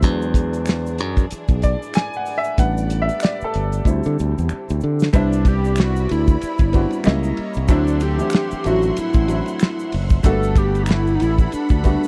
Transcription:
Already playing: upright piano C5
0.02 fingered electric bass E2, string section E3 D4 G#4, upright piano F#3 G#3 D4, kick, closed hi-hat, shaker
0.22 shaker
0.34 kick, closed hi-hat, shaker
0.53 closed hi-hat, shaker
0.66 finger snap, snare, closed hi-hat, shaker
0.86 shaker
0.98 fingered electric bass F#2, closed hi-hat
1.17 kick, closed hi-hat, shaker
1.31 muted fingered electric bass stroke, closed hi-hat, shaker
1.48 fingered electric bass B1, kick, shaker
1.62 upright piano D5, kick, closed hi-hat, shaker
1.82 shaker
1.94 upright piano G#5, finger snap, snare, closed hi-hat, shaker
2.13 upright piano F#5, shaker
2.26 open hi-hat, shaker
2.38 upright piano E5
2.44 closed hi-hat, shaker
2.58 fingered electric bass A1, upright piano G3 B3 D4 F#5, string section A3 G4 B4 D5, kick, closed hi-hat, shaker
2.78 shaker
2.90 closed hi-hat, shaker
3.02 upright piano E5
3.09 closed hi-hat, shaker
3.20 upright piano D5, finger snap, closed hi-hat, shaker
3.25 snare
3.41 upright piano A4, muted fingered electric bass stroke, shaker
3.54 fingered electric bass G1, closed hi-hat
3.72 closed hi-hat, shaker
3.85 fingered electric bass D2, string section D3 C4, upright piano G3 C4 E4, kick, shaker
4.03 fingered electric bass D3, shaker
4.19 fingered electric bass D2, shaker
4.38 fingered electric bass E2, shaker
4.49 finger snap, muted fingered electric bass stroke, shaker
4.69 fingered electric bass D2, shaker
4.81 fingered electric bass D3, shaker
5.00 snare, shaker
5.13 fingered electric bass C2, upright piano G3 B3 C4 D4 E4, analog synth lead D4, string section E4 D5 B5, kick, ride, shaker
5.33 shaker
5.45 analog synth lead G4, kick, ride, shaker
5.65 shaker
5.76 analog synth lead F#4, finger snap, snare, ride, shaker
5.96 shaker
6.09 fingered electric bass D2, analog synth lead E4, ride, shaker
6.28 kick, shaker
6.41 muted fingered electric bass stroke, ride, shaker
6.58 fingered electric bass G1, kick, shaker
6.72 upright piano G3 B3 C4 D4 F#4, kick, ride, shaker
6.91 ride, shaker
7.04 fingered electric bass C#2, upright piano G3 A#3 C#4 E4 D#5, string section E4 C#5 A#5, finger snap, snare, ride, shaker
7.23 shaker
7.37 muted fingered electric bass stroke, ride
7.54 fingered electric bass C2, shaker
7.68 fingered electric bass D2, upright piano F#3 A3 C4 D4 E4, analog synth lead D4, string section E5 F#5 C6, kick, ride, shaker
7.87 shaker
8.00 analog synth lead G4, ride, shaker
8.18 upright piano E3 A3 C4 D4 E4, shaker
8.30 finger snap, ride, shaker
8.35 snare
8.51 muted fingered electric bass stroke, shaker
8.64 fingered electric bass A1, upright piano F3 A3 C4 D4 E4, analog synth lead F#4, ride, shaker
8.71 upright piano F#3
8.82 shaker
8.96 analog synth lead E4, muted fingered electric bass stroke, ride, shaker
9.14 fingered electric bass A1, kick, shaker
9.27 upright piano F#3 A3 C4 D4 E4, ride, shaker
9.46 ride, shaker
9.60 finger snap, snare, ride, shaker
9.79 shaker
9.92 fingered electric bass F#1, open hi-hat, ride
10.10 kick, shaker
10.23 fingered electric bass G1, upright piano G3 A3 A#3 D4 F#4, string section A4 F#5 B5, analog synth lead A4, kick, hi-hat pedal, ride, shaker
10.31 upright piano B3
10.43 shaker
10.56 analog synth lead G4, kick, ride, shaker
10.75 ride, shaker
10.84 analog synth lead D#4, finger snap, shaker
10.89 analog synth lead E4, snare, ride
11.07 shaker
11.15 analog synth lead D#4
11.20 fingered electric bass A1, analog synth lead E4, ride, shaker
11.38 kick, shaker
11.52 analog synth lead D4, muted fingered electric bass stroke, ride, shaker
11.69 fingered electric bass D2, kick, shaker
11.83 upright piano G3 A3 B3 D4 F#4, kick, ride, shaker
12.04 shaker

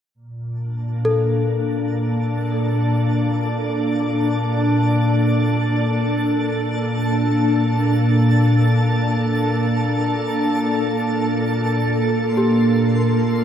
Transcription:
0.14 ambient pad A#2, synth texture A5
0.46 ambient pad D4
0.63 ambient pad A#3
1.05 celesta A4
1.85 ambient pad A4
11.95 synth drone A#3, synth texture C6
12.37 celesta G4

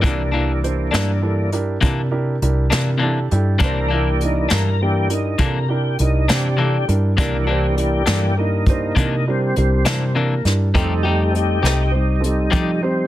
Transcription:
0.01 fingered electric bass C2, clean electric guitar C3 E3 A#3 D4, tonewheel organ E3 A#3 D4, kick, closed hi-hat
0.05 grand piano D4 E4 G4 A#4
0.32 clean electric guitar E3 A#3 D4, grand piano D4 E4 G4 A#4
0.64 grand piano D4 E4 G4 C5, closed hi-hat
0.91 fingered electric bass G2, clean electric guitar E3 A#3 D4, grand piano D4 E4 G4 A#4, snare, closed hi-hat
1.22 tonewheel organ E3 A#3 D4, grand piano D4 E4 G4 A4
1.52 grand piano D4 E4 G4 A#4, closed hi-hat
1.81 clean electric guitar C3 E3 A#3 D4, fingered electric bass C3, grand piano D4 E4 G4 A#4, kick, closed hi-hat
2.11 grand piano D4 E4 G4 A#4
2.42 fingered electric bass C2, grand piano D4 E4 G4 A#4, closed hi-hat
2.70 fingered electric bass C3, clean electric guitar E3 A#3 D4, grand piano D4 E4 G4 A#4, snare, closed hi-hat
2.98 clean electric guitar C3 E3 A#3 D4
3.02 grand piano D4 E4 G4 A4 A5
3.31 fingered electric bass G2, grand piano D4 E4 G4 A4 G5, closed hi-hat
3.59 fingered electric bass C2, clean electric guitar C3 E3 A#3 D4, grand piano D4, kick, closed hi-hat
3.63 tonewheel organ E3 A#3 D4 A#4, grand piano E4 G4 C5
3.88 clean electric guitar E3 A#3 D4, grand piano E4
3.93 grand piano D4 G4 A#4, tonewheel organ G4
4.21 grand piano D4 E4 G4 A#4, tonewheel organ D#4, closed hi-hat
4.49 fingered electric bass G2, clean electric guitar E3 A#3 D4, grand piano D4 E4 G4 A#4, snare, closed hi-hat
4.54 tonewheel organ A#4
4.81 tonewheel organ E3 A#3 D4 G4, grand piano D4 E4 G4 A#4
5.09 grand piano D4 E4 G4 A#4, tonewheel organ D#4, closed hi-hat
5.38 clean electric guitar C3 E3 A#3 D4, fingered electric bass C3, grand piano D4 E4 G4 A4, tonewheel organ A#4, kick, closed hi-hat
5.68 grand piano D4 E4 G4 A#4, tonewheel organ G4
5.99 fingered electric bass C2, grand piano D4 E4 G4 A#4, tonewheel organ D#4, closed hi-hat
6.28 fingered electric bass C3, clean electric guitar E3 A#3 D4, grand piano D4 E4 G4 C5, tonewheel organ D4 G4, snare, closed hi-hat
6.57 clean electric guitar C3 E3 A#3 D4, grand piano D4 E4 G4 A4
6.88 fingered electric bass G2, grand piano D4 E4 G4 A#4, closed hi-hat
7.16 fingered electric bass C2, clean electric guitar C3 E3 A#3 D4, tonewheel organ E3 A#3 D4, grand piano D4 E4 G4 A#4, kick, closed hi-hat
7.44 clean electric guitar A#3 D4, tonewheel organ F#4 G4
7.49 clean electric guitar E3, tonewheel organ D4, grand piano D4 E4 G4 C5
7.76 tonewheel organ D4 G4, grand piano D4 E4 G4 A#4, closed hi-hat
8.06 fingered electric bass G2, tonewheel organ E3 A#3 D4 G4, clean electric guitar E3 A#3 D4, grand piano D4 E4 G4, snare, closed hi-hat
8.10 grand piano A4
8.38 tonewheel organ A#3 D#4, grand piano D4 E4 G4 A#4
8.66 tonewheel organ A#3 D#4, grand piano D4 E4 G4 C5, kick, closed hi-hat
8.95 clean electric guitar C3 E3 A#3 D4, fingered electric bass C3, tonewheel organ A#3 D#4, grand piano D4 E4 G4 A#4, kick, closed hi-hat
9.27 tonewheel organ G3 C4, grand piano D4 E4 G4 A#4
9.56 fingered electric bass C2, tonewheel organ G3 C4, grand piano D4 E4 G4 A#4, closed hi-hat
9.85 fingered electric bass C3, clean electric guitar E3 A#3 D4, tonewheel organ G3 C4, grand piano D4 E4 G4 A#4, snare, closed hi-hat
10.14 clean electric guitar C3 E3 A#3 D4, tonewheel organ A#3, grand piano D4 E4 G4 A#4
10.45 fingered electric bass G2, grand piano D4 E4 G4 A#4, snare, closed hi-hat
10.74 clean electric guitar F3 A3 D#4 G4, tonewheel organ G3 A3 D#4, grand piano C4 D#4 G4 A4, kick, closed hi-hat
11.03 clean electric guitar A3 D#4 G4, grand piano C4 D#4 G4 A4, tonewheel organ D#4 F#4
11.07 tonewheel organ G4
11.31 grand piano C4 D#4 G4 A4
11.35 tonewheel organ D#4 G4, closed hi-hat
11.61 fingered electric bass C2, clean electric guitar A3 D#4 G4, grand piano C4 D#4 G4 A4
11.65 tonewheel organ D#4 G4, snare, closed hi-hat
11.91 grand piano C4 D#4 G4 C5
11.95 tonewheel organ G3 D#4
12.20 grand piano C4 D#4 G4 A4
12.24 tonewheel organ G3 D#4, closed hi-hat
12.51 clean electric guitar F3 A3 D#4 G4, fingered electric bass F3, tonewheel organ G3 D#4, grand piano C4 D#4 A4, kick, closed hi-hat
12.82 tonewheel organ G3 C4, grand piano C4 D#4 G4 C5

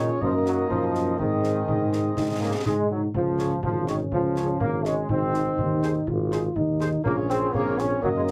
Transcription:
Already playing: tuba A#2, euphonium C#4, french horn section C#4 F4 G#4, trumpet section C#5
0.21 tuba F#2, trombone section F3, euphonium A#3, french horn section C#4 D#4 A#4, trumpet section D#5, concert bass drum
0.45 trombone section F#3, snare
0.68 tuba F#2, trombone section F3, concert bass drum
0.95 snare
1.18 tuba G#2, trombone section D#3, french horn section C4 G#4, euphonium C4, trumpet section D#5, concert bass drum
1.44 snare
1.68 tuba G#2, euphonium D#4, concert bass drum
1.93 snare
2.17 tuba G#2, euphonium D#4, concert bass drum, snare
2.40 trombone section A#3, euphonium C#4
2.65 tuba G#2, trombone section G#3, french horn section C4 G#4, euphonium D#4, trumpet section D#5, concert bass drum, snare
2.91 trombone section F#3
3.14 tuba C#2, trombone section F3, concert bass drum
3.38 french horn section C#4 G#4, trumpet section C#5, snare
3.63 tuba G#1, trombone section F3, euphonium C#4, concert bass drum
3.87 trombone section D#3, french horn section C#4 G#4, trumpet section C#5, snare
4.12 tuba C#2, trombone section F3, concert bass drum
4.36 french horn section C#4 G#4, trumpet section C#5, snare
4.60 tuba G#1, trombone section A#3, concert bass drum
4.84 trombone section G#3, french horn section C#4 G#4, trumpet section C#5, snare
5.09 tuba G#1, trombone section C4, euphonium D#4, concert bass drum
5.34 french horn section D#4 G#4, trumpet section C5, snare
5.58 tuba D#2, concert bass drum
5.83 french horn section D#4 G#4, trumpet section C5, snare
6.07 tuba G#1, euphonium F4, concert bass drum
6.31 french horn section D#4 G#4, trumpet section C5, snare
6.56 tuba D#2, euphonium D#4, concert bass drum
6.81 french horn section D#4 G#4, trumpet section C5, snare
7.04 tuba A#1, trombone section A#3, french horn section C#4 F4 G#4, euphonium C#4, trumpet section C#5, concert bass drum
7.29 trombone section C4, snare
7.53 tuba A#1, trombone section A#3, euphonium C4, french horn section C#4 F4 G#4, trumpet section C#5, concert bass drum
7.78 trombone section C#4, snare
8.02 tuba F#2, trombone section F#3, euphonium A#3, french horn section C#4 D#4 A#4, trumpet section D#5, concert bass drum
8.15 trombone section G#3
8.28 trombone section F#3, snare

